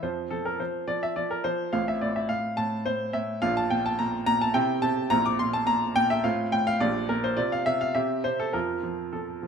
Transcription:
0.03 F2 F3 C4 F4 C5
0.30 F3 A4
0.45 A#4
0.60 F3 C5
0.88 F3 D5
1.03 E5
1.16 F3 D5
1.31 A#4
1.44 F3 C5
1.73 A1 A2 C4 F4 F5
1.88 E5
2.01 A2 D5
2.16 E5
2.29 A2 F5
2.57 A2 A5
2.86 A2 C5
3.13 A2 E5
3.42 A#1 A#2 D4 F4 F5
3.57 A5
3.70 A#2 G5
3.86 A5
3.99 A#2 A#5
4.26 A#2 A#5
4.41 A5
4.54 C3 C4 E4 G5
4.82 C3 A5
5.10 A#1 A#2 C4 E4 A#5
5.26 D6
5.39 A#2 C6
5.53 A5
5.67 A#2 A#5
5.96 A#2 G5
6.10 E5
6.24 A2 C4 F4 F5
6.52 A2 G5
6.67 F5
6.80 A#1 A#2 D4 G4 D5
7.09 A#2 A#4
7.24 C5
7.37 C3 C4 F4 D5
7.52 F5
7.66 C3 E5
7.81 F5
7.95 C3 C4 G4 E5
8.24 C3 C5
8.40 A4
8.53 F2 F3 C4 F4 A#4
8.83 F3
9.13 F3 A4
9.43 F3

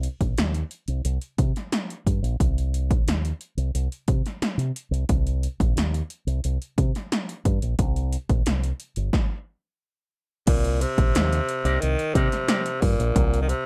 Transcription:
0.03 closed hi-hat
0.21 A#1, kick, closed hi-hat
0.38 D#2, snare, closed hi-hat
0.54 closed hi-hat
0.71 closed hi-hat
0.88 C2, closed hi-hat
1.05 C2, closed hi-hat
1.22 closed hi-hat
1.38 C3, kick, closed hi-hat
1.56 snare, closed hi-hat
1.72 snare, closed hi-hat
1.90 closed hi-hat
2.06 G2, kick, closed hi-hat
2.23 A#1, closed hi-hat
2.40 C2, kick, closed hi-hat
2.58 closed hi-hat
2.74 closed hi-hat
2.91 A#1, kick, closed hi-hat
3.07 D#2, snare, closed hi-hat
3.25 closed hi-hat
3.41 closed hi-hat
3.57 C2, closed hi-hat
3.75 C2, closed hi-hat
3.92 closed hi-hat
4.08 C3, kick, closed hi-hat
4.26 snare, closed hi-hat
4.42 muted fingered electric bass stroke, snare, closed hi-hat
4.58 C3, closed hi-hat
4.76 closed hi-hat
4.91 C2, closed hi-hat
5.09 C2, kick, closed hi-hat
5.27 closed hi-hat
5.43 closed hi-hat
5.60 A#1, kick, closed hi-hat
5.76 D#2, snare, closed hi-hat
5.94 closed hi-hat
6.10 closed hi-hat
6.27 C2, closed hi-hat
6.44 C2, closed hi-hat
6.62 closed hi-hat
6.78 C3, kick, closed hi-hat
6.95 snare, closed hi-hat
7.12 snare, closed hi-hat
7.29 closed hi-hat
7.45 G2, kick, closed hi-hat
7.62 A#1, closed hi-hat
7.79 C2, kick, closed hi-hat
7.96 closed hi-hat
8.13 closed hi-hat
8.29 A#1, kick, closed hi-hat
8.46 C2, snare, closed hi-hat
8.64 closed hi-hat
8.80 closed hi-hat
8.96 G1, closed hi-hat
9.13 kick, snare
10.47 C2 A#2, kick, closed hi-hat, crash
10.64 closed hi-hat
10.81 C3, closed hi-hat
10.98 A#1, kick, closed hi-hat
11.15 D#2, snare, closed hi-hat
11.33 closed hi-hat
11.49 closed hi-hat
11.65 C2 A#3 D#4 G4 D5, closed hi-hat
11.81 C2 D#3, closed hi-hat
11.99 closed hi-hat
12.15 C3 A#3 D#4 G4 D5, kick, closed hi-hat
12.32 snare, closed hi-hat
12.48 A#3 D#4 G4 D5, snare, closed hi-hat
12.66 closed hi-hat
12.81 G2 A#2, kick, open hi-hat
12.99 A#1, closed hi-hat
13.16 C2, kick, closed hi-hat
13.34 closed hi-hat
13.42 D#3
13.49 C3, closed hi-hat

